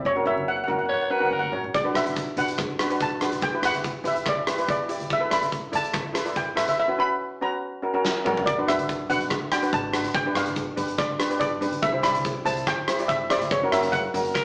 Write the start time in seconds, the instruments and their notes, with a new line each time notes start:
0.05 upright bass F#1, steel pan C#5
0.16 steel pan C#4 F#4 A#4
0.25 upright bass F#1, steel pan C#4 F#4 C#5 E5, low conga
0.38 high conga
0.48 steel pan F#5
0.56 steel pan F#5
0.64 steel pan C#4 F#4 F#5
0.68 upright bass F#1, steel pan A#4 F#5, high conga, low conga
0.79 steel pan F#5
0.86 alto saxophone C#5, steel pan F#5
0.91 steel pan F#5, low conga
1.02 steel pan F#5
1.10 steel pan C#4 F#4 A#4 F#5, alto saxophone B4
1.19 steel pan C#4 F#4 A#4 F#5, high conga
1.26 steel pan F#5
1.31 upright bass F#1, alto saxophone A#4, steel pan F#5, high conga
1.39 steel pan F#5, high conga
1.52 upright bass A#1, steel pan C#4 F#4 C#5, low conga
1.64 low conga
1.74 upright bass B1, steel pan D5, kick, closed hi-hat
1.84 steel pan D4 F#4 B4
1.94 upright bass B1, steel pan D4 F#4 B4 E5, cross-stick, closed hi-hat, low conga
2.06 closed hi-hat, high conga
2.16 kick, closed hi-hat
2.37 upright bass B1, steel pan D4 F#4 B4 F#5, closed hi-hat, high conga, low conga
2.48 closed hi-hat
2.58 kick, cross-stick, closed hi-hat, low conga
2.70 high conga
2.79 steel pan D4 F#4 B4, cross-stick, closed hi-hat
2.90 steel pan D4 F#4 B4, closed hi-hat
3.00 upright bass B1, steel pan A5, kick, closed hi-hat
3.21 steel pan D4 F#4 B4, cross-stick, closed hi-hat, low conga
3.32 closed hi-hat, high conga
3.41 upright bass E2, steel pan G5, kick, closed hi-hat
3.53 steel pan E4 G4 B4
3.62 upright bass E2, steel pan E4 G4 B4 F#5, cross-stick, closed hi-hat, low conga
3.74 closed hi-hat, high conga
3.84 kick, closed hi-hat
4.04 upright bass E2, steel pan E4 G4 B4 E5, closed hi-hat, high conga, low conga
4.16 closed hi-hat
4.26 steel pan D5, kick, cross-stick, closed hi-hat, low conga
4.37 high conga
4.47 steel pan E4 G4 B4, cross-stick, closed hi-hat
4.58 steel pan E4 G4 B4, closed hi-hat
4.68 upright bass E2, steel pan D5, kick, closed hi-hat
4.89 steel pan E4 G4 D5, closed hi-hat
5.00 closed hi-hat, high conga
5.10 upright bass E2, steel pan E5, kick, closed hi-hat
5.20 steel pan E4 A4 B4
5.30 upright bass E2, steel pan E4 A4 D5 B5, cross-stick, closed hi-hat, low conga
5.41 closed hi-hat, high conga
5.52 kick, closed hi-hat
5.72 upright bass E2, steel pan E4 A4 D5 A5, closed hi-hat, high conga, low conga
5.84 closed hi-hat
5.93 kick, cross-stick, closed hi-hat, low conga
6.05 high conga
6.13 steel pan E4 A4 B4, cross-stick, closed hi-hat
6.25 steel pan E4 A4 D5, closed hi-hat
6.36 upright bass E2, steel pan G5, kick, closed hi-hat
6.55 steel pan E4 A4 B4 E5, cross-stick, closed hi-hat, low conga
6.67 steel pan E5, closed hi-hat, high conga
6.79 steel pan E5
6.88 steel pan C#4 F#4 B4
6.98 steel pan C#4 F#4 B4 B5
7.41 steel pan C#4 F#4 B4 A#5
7.82 steel pan C#4 F#4 A#4
7.94 steel pan C#4 F#4 A#4
8.05 snare
8.25 steel pan C#4 F#4 A#4, mid tom
8.37 floor tom
8.46 upright bass B1, steel pan D5, kick, closed hi-hat
8.58 steel pan D4 F#4 B4
8.67 upright bass B1, steel pan D4 F#4 B4 E5, cross-stick, closed hi-hat, low conga
8.79 closed hi-hat, high conga
8.89 kick, closed hi-hat
9.10 upright bass B1, steel pan D4 F#4 B4 F#5, closed hi-hat, high conga, low conga
9.21 closed hi-hat
9.30 kick, cross-stick, closed hi-hat, low conga
9.40 high conga
9.52 steel pan D4 F#4 D5 G5, cross-stick, closed hi-hat
9.63 steel pan D4 F#4 B4, closed hi-hat
9.72 upright bass G#1, steel pan A5, kick, closed hi-hat
9.93 steel pan D4 F#4 B4, cross-stick, closed hi-hat, low conga
10.04 closed hi-hat, high conga
10.14 upright bass G1, steel pan G5, kick, closed hi-hat
10.26 steel pan D4 G4 B4
10.35 upright bass G1, steel pan D4 G4 B4 F5, cross-stick, closed hi-hat, low conga
10.46 closed hi-hat, high conga
10.56 kick, closed hi-hat
10.76 upright bass G1, steel pan D4 G4 B4, closed hi-hat, high conga, low conga
10.88 closed hi-hat
10.98 steel pan D5, kick, cross-stick, closed hi-hat, low conga
11.10 high conga
11.18 steel pan D4 G4 B4, cross-stick, closed hi-hat
11.30 steel pan D4 G4 B4, closed hi-hat
11.40 upright bass G1, steel pan D5, kick, closed hi-hat
11.61 steel pan D4 G4 B4, closed hi-hat, low conga
11.71 closed hi-hat, high conga
11.82 upright bass C2, steel pan E5, kick, closed hi-hat
11.92 steel pan E4 G4 C5
12.03 upright bass C2, steel pan E4 G4 D5 B5, cross-stick, closed hi-hat, low conga
12.14 closed hi-hat, high conga
12.25 kick, closed hi-hat
12.45 upright bass C2, steel pan E4 G4 C5 A5, closed hi-hat, high conga, low conga
12.57 closed hi-hat
12.67 steel pan G5, kick, cross-stick, closed hi-hat, low conga
12.77 high conga
12.88 steel pan E4 G4 C5, cross-stick, closed hi-hat
12.99 steel pan E4 G4 D5, closed hi-hat
13.08 upright bass G1, steel pan E5, kick, closed hi-hat
13.30 steel pan E4 G4 C5 D5, cross-stick, closed hi-hat, low conga
13.41 closed hi-hat, high conga
13.51 upright bass F#1, steel pan C#5, kick, closed hi-hat
13.63 steel pan C#4 F#4 A#4
13.72 upright bass F#1, steel pan C#4 F#4 A#4 E5, cross-stick, closed hi-hat, low conga
13.83 closed hi-hat, high conga
13.92 steel pan F#5, kick, closed hi-hat
14.14 upright bass F#1, steel pan C#4 F#4 A#4, closed hi-hat, high conga, low conga
14.25 closed hi-hat
14.35 alto saxophone A#4, kick, cross-stick, closed hi-hat, low conga